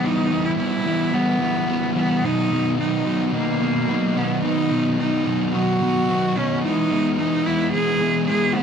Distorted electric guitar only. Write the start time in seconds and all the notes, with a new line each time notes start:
0.04 E3 G3 B3 E4
0.31 E3 G3 B3 E4
0.59 E3 G3 B3 E4
0.86 E3 G3 B3 E4
1.14 E3 G3 B3 E4
1.40 E3 G3 B3 E4
1.68 E3 G3 B3 E4
1.96 E3 G3 B3 E4
2.24 B2 D#3 F#3 B3 D#4
2.51 B2 D#3 F#3 B3 D#4
2.78 B2 D#3 F#3 B3 D#4
3.05 B2 D#3 F#3 B3 D#4
3.32 B2 D#3 F#3 B3 D#4
3.61 B2 D#3 F#3 B3 D#4
3.88 B2 D#3 F#3 B3 D#4
4.16 B2 D#3 F#3 B3 D#4
4.43 B2 D#3 F#3 B3 D#4
4.70 B2 D#3 F#3 B3 D#4
4.98 B2 D#3 F#3 B3 D#4
5.26 B2 D#3 F#3 B3 D#4
5.53 B2 D#3 F#3 B3 D#4
5.81 B2 D#3 F#3 B3 D#4
6.09 B2 D#3 F#3 B3 D#4
6.36 B2 D#3 F#3 B3 D#4
6.64 E3 G#3 B3 E4
6.92 E3 G#3 B3 E4
7.19 E3 G#3 B3 E4
7.46 E3 G#3 B3 E4
7.74 E3 G#3 B3 E4
8.01 E3 G#3 B3 E4
8.29 E3 G#3 B3 E4
8.56 E3 G#3 B3 E4